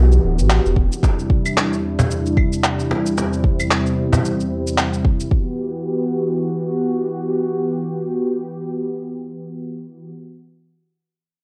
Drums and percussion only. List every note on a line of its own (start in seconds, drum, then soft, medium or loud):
0.12 cabasa soft
0.39 cabasa medium
0.50 clap loud
0.50 cabasa medium
0.66 cabasa soft
0.76 kick loud
0.92 cabasa medium
1.03 kick loud
1.03 cajon slap medium
1.03 cabasa medium
1.19 cabasa soft
1.30 kick loud
1.46 cabasa medium
1.46 claves medium
1.57 cajon slap medium
1.57 clap medium
1.57 cabasa medium
1.73 cabasa soft
1.98 cajon bass medium
1.98 cajon slap medium
1.98 cabasa medium
2.11 cabasa medium
2.26 cabasa soft
2.37 kick loud
2.37 claves medium
2.53 cabasa medium
2.64 clap medium
2.64 cabasa medium
2.80 cabasa soft
2.91 cajon slap medium
3.06 cabasa medium
3.18 cajon slap medium
3.18 cabasa medium
3.33 cabasa soft
3.44 kick loud
3.60 cabasa medium
3.60 claves medium
3.71 clap medium
3.71 cabasa soft
3.86 cabasa soft
4.12 cajon bass medium
4.12 cajon slap medium
4.12 cabasa medium
4.25 cabasa medium
4.40 cabasa soft
4.67 cabasa medium
4.78 clap medium
4.78 cabasa soft
4.93 cabasa soft
5.05 kick medium
5.20 cabasa medium
5.31 kick loud